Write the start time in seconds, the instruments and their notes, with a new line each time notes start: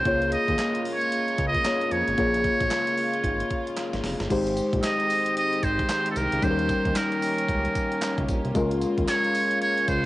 Already playing: string section A#3, muted trumpet C5
0.05 analog synth bass C#2, string section C#3 G#3 F4, tine electric piano A#3 F4 G#4 C#5, kick, closed hi-hat
0.22 closed hi-hat
0.32 muted trumpet D#5, closed hi-hat
0.48 analog synth bass D#2, kick, closed hi-hat
0.59 snare, clap, closed hi-hat
0.75 closed hi-hat
0.85 open hi-hat
0.95 muted trumpet C#5
1.01 closed hi-hat
1.12 closed hi-hat
1.28 closed hi-hat
1.38 analog synth bass C#2, kick, closed hi-hat
1.48 muted trumpet D#5
1.54 kick, closed hi-hat
1.65 tine electric piano A#3 F4 G#4 C#5, snare, clap, closed hi-hat
1.81 closed hi-hat
1.91 analog synth bass F2, muted trumpet C#5, closed hi-hat
2.08 analog synth bass G#1, closed hi-hat
2.17 analog synth bass A#1, tine electric piano A#3 F4 G#4 C#5, string section F4, kick, closed hi-hat
2.34 closed hi-hat
2.44 kick, closed hi-hat
2.61 analog synth bass A#1, kick, closed hi-hat
2.71 snare, clap, closed hi-hat
2.87 closed hi-hat
2.98 open hi-hat
3.14 closed hi-hat
3.24 analog synth bass G#1, kick, closed hi-hat
3.40 closed hi-hat
3.50 kick, closed hi-hat
3.67 closed hi-hat
3.77 snare, clap, closed hi-hat
3.93 analog synth bass G#1, snare, closed hi-hat
4.04 analog synth bass F1, snare, open hi-hat
4.20 analog synth bass G1, snare, closed hi-hat
4.30 analog synth bass G#1, string section D#3 G#3 C4 G4, tine electric piano G#3 D#4 G4 C5, kick, closed hi-hat, crash, tambourine
4.47 closed hi-hat
4.57 closed hi-hat, tambourine
4.73 analog synth bass A#1, kick, closed hi-hat
4.83 muted trumpet D#5, snare, clap, closed hi-hat, tambourine
5.00 closed hi-hat
5.10 open hi-hat, tambourine
5.26 closed hi-hat
5.37 muted trumpet D#5, closed hi-hat
5.53 closed hi-hat
5.63 analog synth bass G#1, muted trumpet C5, kick, closed hi-hat, tambourine
5.79 kick, closed hi-hat
5.89 snare, clap, closed hi-hat, tambourine
6.06 closed hi-hat
6.11 muted trumpet A4
6.16 analog synth bass C2, muted trumpet A#4, closed hi-hat, tambourine
6.32 analog synth bass C#2, closed hi-hat
6.42 analog synth bass D#2, tine electric piano G3 C#4 D#4 G#4, string section A#3 C#4, muted trumpet C5, kick, closed hi-hat, tambourine
6.51 tine electric piano A#4
6.59 closed hi-hat
6.69 kick, closed hi-hat, tambourine
6.85 analog synth bass D#2, kick, closed hi-hat
6.95 muted trumpet A#4, snare, clap, closed hi-hat, tambourine
7.12 closed hi-hat
7.22 open hi-hat, tambourine
7.38 closed hi-hat
7.49 analog synth bass C#2, kick, closed hi-hat
7.65 closed hi-hat
7.75 kick, closed hi-hat, tambourine
7.92 closed hi-hat
8.02 snare, clap, closed hi-hat, tambourine
8.18 analog synth bass C#2, kick, closed hi-hat
8.28 analog synth bass A#1, kick, closed hi-hat, tambourine
8.45 analog synth bass C2, closed hi-hat
8.55 analog synth bass C#2, string section C#3 G#3 F4, tine electric piano G#3 C#4 F4 A#4, kick, closed hi-hat, tambourine
8.71 closed hi-hat
8.82 closed hi-hat, tambourine
8.98 analog synth bass D#2, kick, closed hi-hat
9.08 muted trumpet C#5, snare, clap, closed hi-hat, tambourine
9.24 closed hi-hat
9.35 open hi-hat, tambourine
9.51 closed hi-hat
9.62 muted trumpet C#5, closed hi-hat
9.78 closed hi-hat
9.88 analog synth bass C#2, muted trumpet C5, kick, closed hi-hat, tambourine